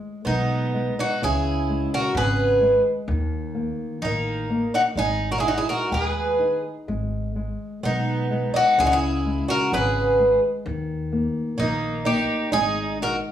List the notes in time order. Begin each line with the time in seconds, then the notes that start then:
Already playing: G#3
0.25 B1 G#3 B3 D#4
0.74 G#3
0.99 D#4 F#4
1.22 C#2 C#3 E4 G#4
1.69 G#3
1.94 F#4 A#4
2.14 G#1 C#3 G#4 B4
2.61 G#3
3.08 D#2 D#3
3.55 A#3
4.02 A1 D#3 A#3 D#4
4.50 A#3
4.74 D#4 F#4
4.95 G#1 G#3 D#4 G#4
5.31 F#4 A#4
5.38 E4 G#4
5.43 D#4
5.48 D#4 F#4
5.58 E4 G#4
5.69 F#4 A#4
5.90 D#2 G#3 G#4 B4
6.39 D#4
6.88 G#1 G#3
7.36 G#3
7.83 B1 G#3 B3 D#4
8.31 G#3
8.54 D#4 F#4
8.78 C#2 C#3 E4 G#4
8.85 D#4 F#4
8.92 E4 G#4
9.25 G#3
9.48 F#4 A#4
9.72 G#1 C#3 G#4 B4
10.19 G#3
10.65 D#2 D#3
11.12 A#3
11.58 A#1 D#3 A#3 D#4
12.05 A#3 D#4 G4
12.52 G#1 G#3 D#4 G#4
13.01 D#4 F#4 A#4